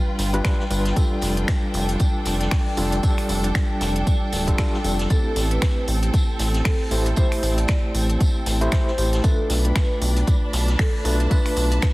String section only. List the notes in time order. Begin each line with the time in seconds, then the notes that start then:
Already playing: F4 B4 G5
0.97 D4
1.41 A4
5.10 C4
9.24 D4
9.58 B5
10.44 A5